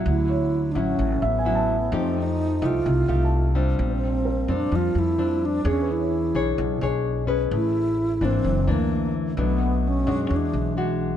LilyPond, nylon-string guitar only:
\new Staff \with { instrumentName = "Nylon-string guitar" } { \time 4/4 \key e \mixolydian \tempo 4 = 129 << { <fis cis' e'>4. <fis cis' e'>4. <fis cis' e'>8 r8 | <a ees' g'>4. <a ees' g'>4 <a ees' g'>4 <g c' d'>8~ | <g c' d'>4. <g c' d'>4. <g c' d'>4 | <d' gis' cis''>4. <d' gis' cis''>4 <d' gis' cis''>4 <cis' gis' b'>8~ |
<cis' gis' b'>4. <e bes d'>4 <e ais d'>4. | <fis a d'>4. <gis d' fis'>4. <gis d' fis'>4 | } \\ { d2 a,2 | f2 c2 | bes,2 f2 | e2 b,2 |
a2 fis,2 | b,2 e2 | } >> }